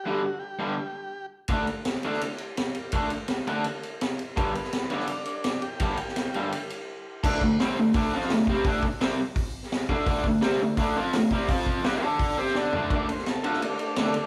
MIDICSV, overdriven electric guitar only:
0, 0, Header, 1, 3, 480
1, 0, Start_track
1, 0, Tempo, 359281
1, 73, Time_signature, 4, 2, 24, 8
1, 7753, Tempo, 355450
1, 19180, End_track
2, 0, Start_track
2, 0, Title_t, "Overdriven electric guitar"
2, 0, Program_c, 0, 29
2, 77, Note_on_c, 0, 43, 74
2, 85, Note_on_c, 0, 50, 99
2, 94, Note_on_c, 0, 55, 97
2, 268, Note_off_c, 0, 43, 0
2, 272, Note_off_c, 0, 50, 0
2, 276, Note_off_c, 0, 55, 0
2, 787, Note_on_c, 0, 43, 93
2, 799, Note_on_c, 0, 50, 98
2, 805, Note_on_c, 0, 55, 90
2, 983, Note_off_c, 0, 43, 0
2, 989, Note_off_c, 0, 50, 0
2, 993, Note_off_c, 0, 55, 0
2, 1997, Note_on_c, 0, 50, 89
2, 2014, Note_on_c, 0, 57, 91
2, 2017, Note_on_c, 0, 62, 88
2, 2190, Note_off_c, 0, 50, 0
2, 2198, Note_off_c, 0, 57, 0
2, 2200, Note_off_c, 0, 62, 0
2, 2735, Note_on_c, 0, 50, 84
2, 2744, Note_on_c, 0, 57, 98
2, 2749, Note_on_c, 0, 62, 99
2, 2919, Note_off_c, 0, 50, 0
2, 2924, Note_off_c, 0, 57, 0
2, 2926, Note_off_c, 0, 62, 0
2, 3926, Note_on_c, 0, 50, 80
2, 3933, Note_on_c, 0, 57, 88
2, 3941, Note_on_c, 0, 62, 95
2, 4115, Note_off_c, 0, 50, 0
2, 4119, Note_off_c, 0, 57, 0
2, 4123, Note_off_c, 0, 62, 0
2, 4642, Note_on_c, 0, 50, 92
2, 4644, Note_on_c, 0, 57, 79
2, 4659, Note_on_c, 0, 62, 98
2, 4833, Note_off_c, 0, 50, 0
2, 4834, Note_off_c, 0, 57, 0
2, 4842, Note_off_c, 0, 62, 0
2, 5830, Note_on_c, 0, 43, 76
2, 5833, Note_on_c, 0, 50, 105
2, 5854, Note_on_c, 0, 55, 98
2, 6026, Note_off_c, 0, 43, 0
2, 6028, Note_off_c, 0, 50, 0
2, 6038, Note_off_c, 0, 55, 0
2, 6552, Note_on_c, 0, 43, 81
2, 6561, Note_on_c, 0, 50, 97
2, 6570, Note_on_c, 0, 55, 92
2, 6746, Note_off_c, 0, 43, 0
2, 6751, Note_off_c, 0, 50, 0
2, 6755, Note_off_c, 0, 55, 0
2, 7753, Note_on_c, 0, 43, 80
2, 7769, Note_on_c, 0, 50, 82
2, 7771, Note_on_c, 0, 55, 92
2, 7946, Note_off_c, 0, 43, 0
2, 7954, Note_off_c, 0, 50, 0
2, 7954, Note_off_c, 0, 55, 0
2, 8499, Note_on_c, 0, 43, 80
2, 8504, Note_on_c, 0, 50, 92
2, 8511, Note_on_c, 0, 55, 91
2, 8679, Note_off_c, 0, 43, 0
2, 8682, Note_off_c, 0, 50, 0
2, 8686, Note_off_c, 0, 55, 0
2, 9694, Note_on_c, 0, 50, 99
2, 9713, Note_on_c, 0, 57, 95
2, 9713, Note_on_c, 0, 62, 101
2, 9918, Note_off_c, 0, 50, 0
2, 9927, Note_off_c, 0, 57, 0
2, 9927, Note_off_c, 0, 62, 0
2, 9946, Note_on_c, 0, 57, 80
2, 9950, Note_on_c, 0, 50, 71
2, 10123, Note_off_c, 0, 57, 0
2, 10125, Note_off_c, 0, 50, 0
2, 10185, Note_on_c, 0, 48, 80
2, 10192, Note_on_c, 0, 55, 86
2, 10202, Note_on_c, 0, 60, 102
2, 10402, Note_off_c, 0, 48, 0
2, 10406, Note_off_c, 0, 55, 0
2, 10411, Note_off_c, 0, 60, 0
2, 10425, Note_on_c, 0, 50, 55
2, 10429, Note_on_c, 0, 57, 79
2, 10601, Note_off_c, 0, 50, 0
2, 10603, Note_off_c, 0, 57, 0
2, 10657, Note_on_c, 0, 50, 96
2, 10671, Note_on_c, 0, 57, 91
2, 10675, Note_on_c, 0, 62, 110
2, 10878, Note_off_c, 0, 50, 0
2, 10884, Note_off_c, 0, 57, 0
2, 10887, Note_off_c, 0, 62, 0
2, 10905, Note_on_c, 0, 53, 88
2, 10922, Note_on_c, 0, 60, 98
2, 10929, Note_on_c, 0, 65, 94
2, 11121, Note_off_c, 0, 53, 0
2, 11129, Note_off_c, 0, 60, 0
2, 11133, Note_off_c, 0, 65, 0
2, 11156, Note_on_c, 0, 50, 62
2, 11166, Note_on_c, 0, 57, 71
2, 11325, Note_off_c, 0, 50, 0
2, 11330, Note_off_c, 0, 57, 0
2, 11387, Note_on_c, 0, 48, 95
2, 11391, Note_on_c, 0, 55, 91
2, 11406, Note_on_c, 0, 60, 97
2, 11601, Note_off_c, 0, 48, 0
2, 11603, Note_off_c, 0, 55, 0
2, 11610, Note_off_c, 0, 60, 0
2, 11610, Note_on_c, 0, 50, 99
2, 11621, Note_on_c, 0, 57, 105
2, 11627, Note_on_c, 0, 62, 103
2, 11831, Note_off_c, 0, 50, 0
2, 11837, Note_off_c, 0, 57, 0
2, 11840, Note_off_c, 0, 62, 0
2, 12084, Note_on_c, 0, 48, 87
2, 12093, Note_on_c, 0, 55, 96
2, 12100, Note_on_c, 0, 60, 87
2, 12308, Note_off_c, 0, 48, 0
2, 12312, Note_off_c, 0, 55, 0
2, 12315, Note_off_c, 0, 60, 0
2, 13277, Note_on_c, 0, 50, 97
2, 13287, Note_on_c, 0, 57, 93
2, 13297, Note_on_c, 0, 62, 120
2, 13502, Note_off_c, 0, 50, 0
2, 13506, Note_off_c, 0, 57, 0
2, 13511, Note_off_c, 0, 62, 0
2, 13516, Note_on_c, 0, 50, 93
2, 13526, Note_on_c, 0, 57, 103
2, 13531, Note_on_c, 0, 62, 101
2, 13735, Note_off_c, 0, 50, 0
2, 13745, Note_off_c, 0, 57, 0
2, 13748, Note_off_c, 0, 62, 0
2, 13751, Note_on_c, 0, 50, 71
2, 13760, Note_on_c, 0, 57, 79
2, 13937, Note_off_c, 0, 50, 0
2, 13942, Note_off_c, 0, 57, 0
2, 13978, Note_on_c, 0, 48, 87
2, 13989, Note_on_c, 0, 55, 102
2, 14002, Note_on_c, 0, 60, 88
2, 14211, Note_off_c, 0, 48, 0
2, 14216, Note_off_c, 0, 55, 0
2, 14223, Note_off_c, 0, 60, 0
2, 14240, Note_on_c, 0, 50, 67
2, 14250, Note_on_c, 0, 57, 71
2, 14421, Note_off_c, 0, 50, 0
2, 14426, Note_off_c, 0, 57, 0
2, 14466, Note_on_c, 0, 50, 94
2, 14481, Note_on_c, 0, 57, 109
2, 14491, Note_on_c, 0, 62, 104
2, 14694, Note_off_c, 0, 50, 0
2, 14702, Note_off_c, 0, 57, 0
2, 14707, Note_off_c, 0, 62, 0
2, 14725, Note_on_c, 0, 53, 96
2, 14731, Note_on_c, 0, 60, 105
2, 14751, Note_on_c, 0, 65, 112
2, 14944, Note_off_c, 0, 53, 0
2, 14947, Note_off_c, 0, 60, 0
2, 14957, Note_off_c, 0, 65, 0
2, 14976, Note_on_c, 0, 50, 64
2, 14985, Note_on_c, 0, 57, 66
2, 15149, Note_off_c, 0, 50, 0
2, 15153, Note_off_c, 0, 57, 0
2, 15199, Note_on_c, 0, 48, 97
2, 15214, Note_on_c, 0, 55, 107
2, 15218, Note_on_c, 0, 60, 106
2, 15421, Note_off_c, 0, 48, 0
2, 15428, Note_off_c, 0, 55, 0
2, 15430, Note_off_c, 0, 60, 0
2, 15432, Note_on_c, 0, 53, 94
2, 15444, Note_on_c, 0, 60, 101
2, 15458, Note_on_c, 0, 65, 107
2, 15898, Note_off_c, 0, 53, 0
2, 15904, Note_off_c, 0, 60, 0
2, 15910, Note_on_c, 0, 55, 89
2, 15911, Note_off_c, 0, 65, 0
2, 15924, Note_on_c, 0, 62, 89
2, 15926, Note_on_c, 0, 67, 93
2, 16149, Note_off_c, 0, 55, 0
2, 16149, Note_off_c, 0, 62, 0
2, 16149, Note_on_c, 0, 62, 99
2, 16154, Note_on_c, 0, 69, 92
2, 16172, Note_off_c, 0, 67, 0
2, 16172, Note_on_c, 0, 74, 101
2, 16618, Note_off_c, 0, 62, 0
2, 16620, Note_off_c, 0, 69, 0
2, 16627, Note_on_c, 0, 60, 83
2, 16629, Note_off_c, 0, 74, 0
2, 16638, Note_on_c, 0, 67, 108
2, 16640, Note_on_c, 0, 72, 96
2, 16855, Note_off_c, 0, 60, 0
2, 16860, Note_on_c, 0, 62, 90
2, 16862, Note_off_c, 0, 67, 0
2, 16863, Note_off_c, 0, 72, 0
2, 16878, Note_on_c, 0, 69, 91
2, 16886, Note_on_c, 0, 74, 97
2, 17094, Note_off_c, 0, 62, 0
2, 17102, Note_off_c, 0, 69, 0
2, 17107, Note_off_c, 0, 74, 0
2, 17125, Note_on_c, 0, 50, 89
2, 17139, Note_on_c, 0, 57, 88
2, 17151, Note_on_c, 0, 62, 89
2, 17347, Note_off_c, 0, 50, 0
2, 17354, Note_off_c, 0, 57, 0
2, 17360, Note_off_c, 0, 62, 0
2, 17363, Note_on_c, 0, 50, 83
2, 17385, Note_on_c, 0, 57, 98
2, 17390, Note_on_c, 0, 62, 90
2, 17545, Note_off_c, 0, 50, 0
2, 17557, Note_off_c, 0, 57, 0
2, 17559, Note_off_c, 0, 62, 0
2, 18064, Note_on_c, 0, 50, 88
2, 18078, Note_on_c, 0, 57, 92
2, 18083, Note_on_c, 0, 62, 84
2, 18258, Note_off_c, 0, 50, 0
2, 18265, Note_off_c, 0, 57, 0
2, 18268, Note_off_c, 0, 62, 0
2, 18798, Note_on_c, 0, 50, 97
2, 18800, Note_on_c, 0, 57, 96
2, 18818, Note_on_c, 0, 62, 92
2, 18988, Note_off_c, 0, 50, 0
2, 18989, Note_off_c, 0, 57, 0
2, 18998, Note_off_c, 0, 62, 0
2, 19180, End_track
3, 0, Start_track
3, 0, Title_t, "Muted overdriven electric guitar strokes"
3, 11850, Note_on_c, 9, 29, 72
3, 11985, Note_off_c, 9, 29, 0
3, 19180, End_track
0, 0, End_of_file